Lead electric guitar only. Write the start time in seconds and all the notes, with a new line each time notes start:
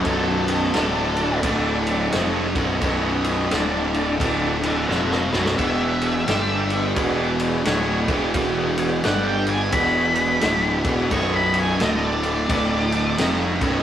0.04 A4
4.66 D5 F#5
4.87 D#5 F#5
5.11 B4 D#5
5.32 B4 D#5
5.57 E5
9.05 F#5
9.28 G5
9.49 G#5
9.73 B5
11.12 C#6
11.36 B5
11.60 G#5
11.82 D#5
12.05 D5